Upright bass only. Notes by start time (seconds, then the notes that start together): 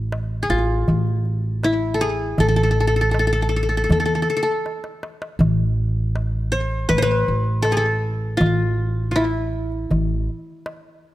Already playing: A1
0.49 A1
0.88 A1
2.38 A1
3.89 E2
5.39 A1
6.90 A1
7.28 A1
8.40 A1
9.90 A1